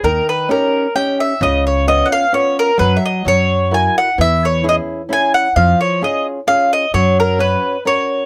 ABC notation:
X:1
M:3/4
L:1/16
Q:"Swing" 1/4=130
K:C#dor
V:1 name="Mandolin"
A2 B2 A4 =g2 e2 | d2 c2 d3/2 f/2 ^e2 c2 A2 | B3/2 e/2 d2 c4 g2 f2 | e2 c2 d2 z2 g2 f2 |
^e2 c2 d2 z2 e2 d2 | c2 A2 B4 c4 |]
V:2 name="Nylon-string guitar"
D,4 [CD=G]4 [CDG]4 | C,4 [B,C^E]4 [B,CE]4 | F,4 F,4 [EFA]4 | E,4 [CEG]4 [CEG]4 |
^E,4 [C^EG]4 [CEG]4 | F,4 [CFc]4 [CFA]4 |]
V:3 name="Upright bass" clef=bass
D,,2 z8 z2 | C,,8 z4 | F,,2 z2 F,,8 | E,,8 z4 |
^E,,2 z8 z2 | F,,8 z4 |]